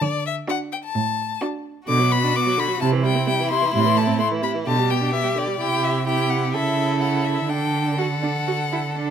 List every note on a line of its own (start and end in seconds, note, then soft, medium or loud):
0.02 0.39 D3 medium
0.02 0.25 D5 medium
0.26 0.34 E5 medium
0.48 0.83 D4 soft
0.48 0.83 F#4 medium
0.48 0.57 F#5 medium
0.72 0.77 G5 medium
0.84 1.41 A5 medium
0.95 1.32 A2 medium
1.41 1.77 D4 medium
1.41 1.76 F#4 medium
1.88 2.27 B2 medium
1.88 2.02 D3 medium
1.88 2.81 F#4 soft
1.88 2.13 D6 medium
2.00 2.13 F#3 soft
2.12 2.25 B3 soft
2.12 2.37 B5 medium
2.24 2.36 D4 soft
2.34 2.48 B3 soft
2.34 2.61 D6 medium
2.47 2.59 F#3 soft
2.58 2.70 D3 soft
2.58 2.80 B5 medium
2.69 2.80 F#3 soft
2.80 2.94 C3 medium
2.80 3.20 C3 medium
2.80 4.68 E4 medium
2.80 2.89 A5 medium
2.93 3.05 E3 soft
3.03 3.17 G3 soft
3.03 3.27 G5 medium
3.16 3.29 C4 soft
3.27 3.41 G3 soft
3.27 3.50 G5 medium
3.40 3.52 E3 soft
3.51 3.64 C3 soft
3.51 3.73 C6 medium
3.63 3.74 E3 soft
3.73 4.12 A2 medium
3.73 3.87 C3 soft
3.73 3.99 C6 medium
3.86 3.98 E3 soft
3.97 4.09 A3 soft
3.97 4.19 A5 medium
4.07 4.20 C4 soft
4.19 4.33 A3 soft
4.19 4.27 C6 medium
4.31 4.44 E3 soft
4.42 4.56 C3 soft
4.42 4.51 B5 medium
4.55 4.67 E3 soft
4.67 5.05 B2 soft
4.67 4.79 D3 soft
4.67 5.59 G4 soft
4.67 4.92 A5 medium
4.77 4.91 G3 soft
4.89 5.03 B3 soft
4.89 5.13 G5 medium
5.01 5.14 D4 soft
5.13 5.25 B3 soft
5.13 5.39 E5 medium
5.23 5.37 G3 soft
5.35 5.49 D3 soft
5.35 5.62 D5 medium
5.48 5.58 G3 soft
5.59 6.55 C3 soft
5.59 6.03 E4 soft
5.59 6.03 G4 soft
5.59 5.85 G5 medium
5.84 6.06 E5 medium
6.06 6.52 E4 soft
6.06 6.55 G4 soft
6.06 6.31 G5 medium
6.30 6.53 F#5 soft
6.52 7.49 C#3 soft
6.52 7.50 E4 soft
6.52 7.49 A4 soft
6.52 7.00 E5 medium
7.01 7.26 F#5 medium
7.25 7.50 E5 soft
7.49 9.10 D3 soft
7.49 7.97 D4 soft
7.49 7.98 A4 soft
7.49 8.00 G5 medium
7.98 8.06 F#4 soft
7.98 9.10 A4 soft
7.98 9.10 F#5 soft
8.23 8.31 D4 soft
8.47 8.55 F#4 soft
8.72 8.80 E4 soft
8.96 9.10 D4 soft